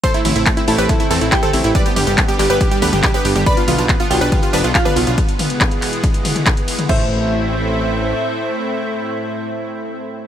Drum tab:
CC |----------------|----------------|----------------|----------------|
RD |x-x-x-x-x-x-x-x-|x-x-x-x-x-x-x-x-|x-x-x-x-x-x-x-x-|x-x-x-x-x-x-x-x-|
HH |xxoxxxoxxxoxxxox|xxoxxxoxxxoxxxox|xxoxxxoxxxoxxxox|xxoxxxoxxxoxxxox|
CP |----x-------x---|----x-x-----x---|----x-------x---|----x-x-----x---|
T2 |--o-----o----o--|--o-------oo---o|--o-----o----o--|--o-------oo---o|
BD |o---o---o---o---|o---o---o---o---|o---o---o---o---|o---o---o---o---|

CC |x---------------|----------------|
RD |----------------|----------------|
HH |----------------|----------------|
CP |----------------|----------------|
T2 |----------------|----------------|
BD |o---------------|----------------|